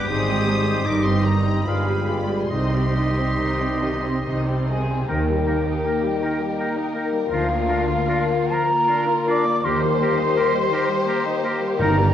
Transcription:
Already playing: harp G2 D3 B3 G4 D5, viola section B3, violin section G4, clarinet G4
0.09 double bass section G#1, cello section G#2, harp G#2, french horn section G3 C4, viola section G#3 D#4, violin section G#4 C5 D#6, oboe C5
0.28 viola section C4 G#4, violin section G4 D#5
0.35 harp D#4
0.46 viola section G#3 D#4, violin section G#4 C5
0.59 harp G4 C5
0.65 viola section C4 G#4, violin section G4 D#5
0.84 double bass section G1, cello section G2, harp G2, viola section D#3 D#4, french horn section G3 D#4, violin section D#4 C5 D6, oboe D#5
1.02 viola section G3 C4, violin section G4 D#5 C6
1.13 harp D#4
1.24 viola section D#3 D#4, violin section D#4 C5 A#5
1.40 harp G4 C5
1.45 viola section G3 C4, violin section G4 D#5
1.65 double bass section G1, harp G2, cello section G2, viola section G#3 F4, french horn section G#3 F4, violin section G4 D5 B5, clarinet G#4, oboe F5
1.88 viola section G3 G4, violin section G#4 B4
1.95 harp F4
2.08 viola section G#3 F4, violin section G4 D5
2.23 harp G#4 D5
2.29 viola section G3 G4, violin section G#4 B4
2.48 double bass section C2, cello section C3, harp C3, viola section D#3 D#4, french horn section G3 D#4, clarinet G4, oboe D#5, violin section C6
2.52 violin section C5 D#5
2.74 viola section G3 C4, violin section G4 C5
2.81 harp D#4
2.96 viola section D#3 D#4, violin section C5 D#5
3.10 harp G3
3.17 viola section G3 C4, violin section G4 C5
3.39 double bass section C2, cello section C3, viola section D#3 D#4, harp D#4, violin section C5 D#5
3.60 viola section G3 C4, violin section G4 C5
3.81 viola section D#3 D#4, violin section C5 D#5
3.96 harp D#4
4.03 viola section G3 C4, violin section G4 C5
4.23 double bass section C2, cello section C3, viola section D#3 D#4, violin section C5 D#5, harp C5
4.45 viola section G3 C4, violin section G4 C5
4.54 harp D#4
4.66 viola section D#3 D#4, violin section G#4 C5 D#5, flute G#5
4.83 harp G4
4.88 viola section G3 C4, violin section G4 C5
5.07 double bass section D#2, cello section D#2, harp D#3, viola section D#3 A#3, french horn section A#3 D#4, clarinet D#4, violin section G4 A#4, oboe A#4, flute G5
5.28 viola section G3, harp A#3
5.46 viola section A#3, clarinet D#4, harp D#4, oboe A#4
5.67 viola section D#4, harp A#4
5.84 viola section A#3, clarinet D#4, harp D#4, oboe A#4
6.03 viola section G3
6.21 viola section D#3, clarinet D#4, harp A#5
6.25 oboe A#4
6.40 viola section G3, harp D#5
6.59 viola section A#3, clarinet D#4, oboe A#4, harp A#5
6.76 viola section D#4, harp D#5
6.95 viola section A#3, clarinet D#4, oboe A#4, harp A#4
7.12 viola section G3, harp D#4
7.30 cello section D2, double bass section D2, harp D3, viola section F3, violin section F4, french horn section F4, clarinet F4, oboe A#4, flute F5
7.49 viola section A#3, harp D4
7.68 harp A#3, viola section D4, clarinet F4, oboe A#4
7.88 viola section F4, harp F4
8.08 viola section D4, clarinet F4, harp A#4, oboe A#4
8.29 viola section A#3, harp F4
8.49 viola section F3, clarinet F4, violin section A#4, oboe A#4, harp F5, flute A#5
8.70 viola section A#3
8.87 viola section D4, clarinet F4, oboe A#4, harp F5
9.08 viola section F4, harp A#4
9.27 viola section D4, harp F4, clarinet F4, oboe A#4, violin section D5, flute D6
9.45 viola section A#3, harp A#3
9.64 double bass section D#2, cello section D#2, harp D#3, viola section D#3 A#3, french horn section A#3 G4, clarinet G4, violin section G4 C5, oboe A#4, flute C6
9.83 harp G3, viola section G3
10.00 viola section A#3, harp D#4, clarinet G4, oboe A#4
10.18 viola section D#4, harp A#4
10.36 viola section A#3, harp G4, clarinet G4, oboe A#4
10.53 viola section G3, harp D#5
10.72 viola section D#3, clarinet G4, oboe A#4, harp A#5
10.90 viola section G3, harp G5
11.06 viola section A#3, clarinet G4, oboe A#4, harp A#5
11.25 viola section D#4, harp D#5
11.42 viola section A#3, harp G4, clarinet G4, oboe A#4
11.60 viola section G3, harp A#4
11.79 double bass section G1, timpani G2, cello section G2, harp G2, viola section D#3, clarinet D#4, french horn section D#4, violin section A#4, oboe A#4, flute A#5
11.97 harp D#3, viola section G3

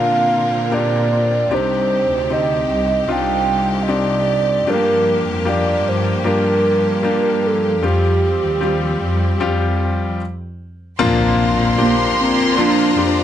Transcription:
Already playing: cello section A#2, grand piano C3 A#3 C4 D4 F4 G4 A#4, string section D3 C4 F4 A#4, soft synth lead F5
0.71 grand piano A#3 C4 D4 G4, soft synth lead D5
1.51 cello section C2, string section C3 G4, grand piano C3 C4 D4 D#4 G4, soft synth lead C5
2.11 cello section D2
2.30 grand piano C4 D#4 G4, soft synth lead D#5
2.70 cello section C2
3.08 cello section C2, grand piano C4 D4 D#4 F4
3.12 soft synth lead G5
3.83 soft synth lead D#5
3.88 grand piano C4 D4 D#4 G4, soft synth lead D5
4.67 grand piano G2 A3 D4 F4 G4, cello section G2, string section F3 A#3, soft synth lead A#4
4.74 grand piano A#3
5.27 cello section F2
5.45 grand piano A#3 D4 F4 G4, soft synth lead D5
5.86 cello section G2, soft synth lead C5
6.24 cello section G2, grand piano A#3 D4 F4 G4, soft synth lead A#4
7.03 grand piano A#3 D4 F4 G4
7.47 soft synth lead A4
7.82 cello section F2, grand piano G3 C4 F4 G4, string section G3 C4, soft synth lead G4
8.43 cello section D#2
8.60 grand piano G3 C4 F4 G4
9.02 cello section F2
9.40 cello section F2, grand piano G3 C4 F4 G4
10.99 grand piano A#2 F3 A#3 C4 D4 F4, cello section A#2, string section F4 C5 D5 A#5, violin section C6, impact
11.59 cello section A#2
11.78 grand piano F3 A#3 C4 D4 G4, soft synth lead A#3
12.19 cello section A#2, soft synth lead C4
12.57 grand piano F3 A#3 C4 D4 F4, soft synth lead D4
12.97 cello section F2, grand piano F3 A#3 C4 D4 G4

